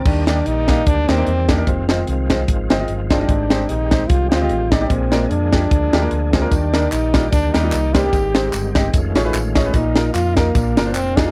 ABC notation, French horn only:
X:1
M:4/4
L:1/8
Q:"Swing" 1/4=149
K:Eb
V:1 name="French horn"
D D E2 D C2 D | C C2 z4 D- | D2 E2 F F2 E | C2 D4- D C |
D2 E2 D E2 G- | G3 z4 ^C | E2 F B,3 C E |]